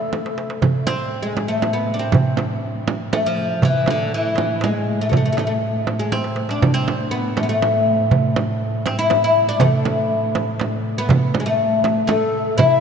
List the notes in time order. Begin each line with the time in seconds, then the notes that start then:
Already playing: A3 A4
0.13 darbuka tek, frame drum
0.26 darbuka ka
0.38 darbuka tek
0.50 darbuka ka
0.62 A2, darbuka dum, frame drum
0.87 C4, darbuka tek, frame drum
1.23 G#3
1.37 darbuka tek, frame drum
1.48 A3
1.62 darbuka tek, frame drum
1.73 B3
1.89 darbuka ka
1.94 D4
1.99 C4
2.12 frame drum, darbuka dum
2.37 darbuka tek, frame drum
2.87 darbuka tek, frame drum
3.13 A3, darbuka tek, frame drum
3.26 F3
3.38 darbuka ka
3.62 A2 E3, darbuka dum, frame drum
3.86 darbuka tek, frame drum
3.90 D3
4.14 E3
4.36 darbuka tek, frame drum
4.61 G#3, darbuka tek, frame drum
4.87 darbuka ka
5.01 A3
5.09 A3, darbuka dum, frame drum
5.17 A3
5.26 A3
5.33 A3
5.37 A3, darbuka tek, frame drum
5.47 A3
5.87 darbuka tek, frame drum
5.99 G#3
6.12 C4, darbuka tek, frame drum
6.24 darbuka ka
6.36 darbuka tek
6.49 D4, darbuka ka
6.62 A2, frame drum, darbuka dum
6.74 C4
6.88 darbuka tek, frame drum
7.11 B3
7.37 A3, darbuka tek, frame drum
7.43 B3
7.49 A3
7.62 darbuka tek, frame drum
7.87 darbuka ka
8.11 darbuka dum, frame drum
8.36 darbuka tek, frame drum
8.86 C4, darbuka tek, frame drum
8.99 E4
9.10 darbuka tek, frame drum
9.24 E4
9.36 darbuka ka
9.49 D4
9.60 A2 A3, frame drum, darbuka dum
9.85 darbuka tek, frame drum
10.35 darbuka tek, frame drum
10.60 darbuka tek, frame drum
10.86 darbuka ka
10.98 B3
11.09 darbuka dum, frame drum
11.34 darbuka tek, frame drum
11.40 G#3
11.46 A3
11.84 darbuka tek, frame drum
12.07 A3 A4, darbuka tek, frame drum
12.58 E4 E5, darbuka dum, frame drum